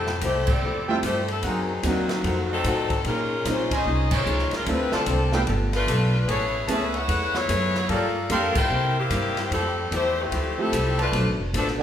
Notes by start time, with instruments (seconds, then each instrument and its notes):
Already playing: upright bass F2, hollow-body jazz guitar F3 A3 E4 G4, saxophone section G3 C4 E4 A4
0.07 snare
0.21 upright bass C2, hollow-body jazz guitar F3 A3 E4 G4, saxophone section A3 E4 G4 C5, kick, hi-hat pedal, ride
0.47 saxophone section C4 G4 A4 D5, kick, crash
0.62 upright bass E2, hollow-body jazz guitar F3 A3 E4 G4
0.88 grand piano F3 G3 A3 C4 E4, trumpet section F4 A4 E5 G5
1.03 upright bass G2, hollow-body jazz guitar F3 A3 E4 G4, saxophone section A3 E4 G4 C5, kick, hi-hat pedal, ride
1.28 saxophone section G3 C4 E4 A4, ride
1.43 upright bass F#2, hollow-body jazz guitar C3 F#3 A#3 D#4, saxophone section F#3 C4 D#4 G#4, trumpet section D#4 A#4 C5 F#5, kick, ride
1.83 upright bass D#2, hollow-body jazz guitar C3 F#3 A#3 D#4, saxophone section D#3 A#3 C4 F#4, grand piano F#3 A#3 C4 D4 D#4, kick, hi-hat pedal, ride
2.09 snare, ride
2.24 upright bass F2, hollow-body jazz guitar F3 A3 D#4 F#4, kick, ride
2.52 saxophone section F#3 C4 D#4 A4
2.64 upright bass A2, hollow-body jazz guitar F3 A3 D#4 F#4, kick, hi-hat pedal, ride
2.90 kick, ride
3.04 upright bass A#2, hollow-body jazz guitar A#2 G#3 C#4 D#4, saxophone section G#3 C#4 F4 A#4, kick, ride
3.45 upright bass A#1, hollow-body jazz guitar A#2 G#3 C#4 D#4, grand piano G#3 C4 C#4 D#4 F4, saxophone section G#3 C#4 F4 C5, kick, snare, hi-hat pedal, ride
3.71 trumpet section C#4 D#4 C5 G#5, saxophone section C#4 G#4 C5 D#5, kick, ride
3.85 upright bass C2, hollow-body jazz guitar A#2 G#3 C#4 D#4, kick
4.11 trumpet section D#4 C5 C#5 G#5, saxophone section C5, kick, crash
4.15 saxophone section G#3 F4 C#5
4.26 upright bass C#2, hollow-body jazz guitar A#2 G#3 C#4 D#4, hi-hat pedal
4.39 snare
4.51 muted upright bass stroke, snare, ride
4.55 saxophone section G#3 C#4 F4 A#4
4.66 upright bass D2, hollow-body jazz guitar D3 A3 C4 F4, saxophone section G3 C4 E4 B4, grand piano A3 C4 D4 E4 F4, kick, ride
4.92 saxophone section F3 C4 D4 A4, trumpet section F4 C5 D5 A5, muted upright bass stroke, snare
5.06 upright bass C2, hollow-body jazz guitar D3 A3 C4 F4, kick, hi-hat pedal, ride
5.32 grand piano A3 B3 D4 F4 A4, trumpet section G4 B4 F5 G5, snare
5.47 upright bass G1, hollow-body jazz guitar G3 B3 F4 A4, kick, ride
5.73 saxophone section A3 D4 F4 B4, snare, ride
5.87 upright bass B1, hollow-body jazz guitar G3 B3 F4 A4, kick, hi-hat pedal, ride
6.27 upright bass A1, hollow-body jazz guitar A3 C#4 G#4 B4, saxophone section B3 E4 G#4 C#5, trumpet section G#4 B4 C#5 A5, kick, ride
6.68 upright bass C#2, grand piano A3 B3 C#4 E4 G#4, hollow-body jazz guitar A3 C#4 G#4 B4, saxophone section C#4 G#4 B4 E5, trumpet section G#4 B4 C#5 A5, kick, hi-hat pedal, ride
6.94 saxophone section E4 B4 C#5 F#5, ride
7.08 upright bass E2, hollow-body jazz guitar A3 C#4 G#4 B4, kick, ride
7.34 saxophone section B3 E4 G#4 C#5, snare
7.49 upright bass F#2, hollow-body jazz guitar A3 C#4 G#4 B4, kick, hi-hat pedal, ride
7.75 snare
7.89 upright bass G2, hollow-body jazz guitar G3 A#3 F4 A4, saxophone section A#3 F4 A4 D5, trumpet section G4 A#4 F5 A5, kick, ride
8.29 upright bass F2, grand piano G3 A#3 D4 F4 A4, hollow-body jazz guitar G3 A#3 F4 A4, saxophone section D4 A4 A#4 F5, trumpet section G4 A#4 F5 C6, kick, hi-hat pedal, ride
8.55 saxophone section E4 A#4 C5 G5, muted upright bass stroke, kick, crash
8.70 upright bass C3, hollow-body jazz guitar C3 G3 A#3 E4
8.98 saxophone section E3 A#3 C4 G4
9.10 upright bass G2, hollow-body jazz guitar C3 G3 A#3 E4, kick, hi-hat pedal, ride
9.37 snare, ride
9.51 upright bass F2, hollow-body jazz guitar F3 A3 E4 G4, saxophone section G3 C4 E4 A4, kick, ride
9.91 upright bass E2, hollow-body jazz guitar F3 A3 E4 G4, saxophone section A3 E4 G4 C5, kick, hi-hat pedal, ride
10.21 saxophone section E3 A3 C4 G4
10.31 upright bass D2, hollow-body jazz guitar F3 A3 E4 G4, kick, ride
10.58 grand piano F3 A3 C4 E4 G4, saxophone section G3 C4 E4 A4
10.72 upright bass C2, hollow-body jazz guitar F3 A3 E4 G4, kick, hi-hat pedal, ride
10.98 saxophone section A3 D4 F4 B4, trumpet section F4 B4 D5 A5, ride
11.12 upright bass B1, hollow-body jazz guitar B2 F3 A3 D4, kick, ride
11.26 upright bass A1
11.40 upright bass F1
11.53 upright bass A1, hollow-body jazz guitar B2 F3 A3 D4, saxophone section F3 B3 D4 A4, kick, hi-hat pedal, ride
11.68 snare
11.79 trombone section G#3, trumpet section E4 B4 D5 G#5